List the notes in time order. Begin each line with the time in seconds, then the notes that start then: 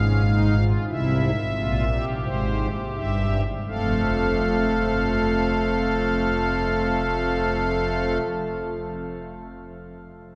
Already playing: G#1 G#2 C#4 F5
0.27 D#4
0.58 F4
0.89 C2 C3 E4 E5
1.55 A#1 A#2 F4
1.90 G4
2.24 G#1 G#2 C5
2.95 G1 G2 E5
3.68 F1 F2 F3 A3 A4 F5